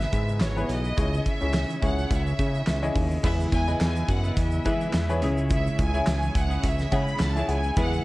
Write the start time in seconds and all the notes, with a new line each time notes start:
Already playing: G#2 G#3 B3 E4 G#4 B4 E5
0.00 snare, shaker
0.12 G#2, kick, closed hi-hat, shaker
0.29 shaker
0.40 G#1 C#5, snare, clap, closed hi-hat, shaker
0.56 B3 E4 G#4 B4, shaker
0.69 B1 D#5, closed hi-hat, shaker
0.84 shaker
0.97 C#2 C#3 C#4 E4 G#4 C#5, kick, closed hi-hat, shaker
1.14 shaker
1.26 E5, kick, closed hi-hat, shaker
1.41 C#2 C#4 E4 G#4 C#5, shaker
1.53 snare, clap, closed hi-hat, shaker
1.70 closed hi-hat, shaker
1.81 C#2 C#4 E4 G#4 C#5 F#5, kick, closed hi-hat, shaker
1.98 shaker
2.11 C#2 E5, kick, closed hi-hat, shaker
2.27 shaker
2.39 C#3, kick, closed hi-hat, shaker
2.54 shaker
2.67 C#2, snare, clap, closed hi-hat, shaker
2.82 C#4 E4 G#4 D#5, shaker
2.95 D#2, kick, open hi-hat, shaker
3.11 shaker
3.23 E2 E3 G#3 B3 E4 G#4 B4 E5, kick, crash, shaker
3.40 shaker
3.52 E2 G#5, kick, closed hi-hat, shaker
3.67 B3 E4 G#4 B4 D#5, shaker
3.80 E2 G#5, snare, clap, closed hi-hat, shaker
3.96 shaker
4.09 F#2 F#5, kick, closed hi-hat, shaker
4.24 B3 E4 B4, shaker
4.37 E2 E5, kick, closed hi-hat, shaker
4.52 shaker
4.65 E3 G#3 B3 E4 G#4 B4 E5, kick, closed hi-hat, shaker
4.81 shaker
4.93 E2, snare, clap, closed hi-hat, shaker
5.09 B3 E4 G#4 B4 C#5, shaker
5.21 C#2 C#3 G#3 C#4 E4 G#4 C#5 E5, closed hi-hat
5.37 shaker
5.50 E5, kick, closed hi-hat, shaker
5.67 shaker
5.79 C#2 G#5, kick, closed hi-hat, shaker
5.94 C#4 E4 G#4 C#5 E5, shaker
6.06 C#2 G#5, snare, clap, closed hi-hat, shaker
6.22 shaker
6.35 C#2 F#5, kick, closed hi-hat, shaker
6.50 C#4 E4 G#4, shaker
6.63 C#2 E5, kick, closed hi-hat, shaker
6.79 snare, shaker
6.91 C#3 G#3 C#4 E4 G#4 C#5 F#5 B5, kick, closed hi-hat, shaker
7.08 shaker
7.19 C#2 A5, snare, clap, closed hi-hat, shaker
7.35 C#4 E4 G#4 C#5 E5, shaker
7.48 C#2 E4 G#4 C#5 F#5 G#5, closed hi-hat
7.64 shaker
7.76 E2 E3 G#3 B3 E4 G#4 B4 E5 F#5, kick, closed hi-hat, shaker
7.93 shaker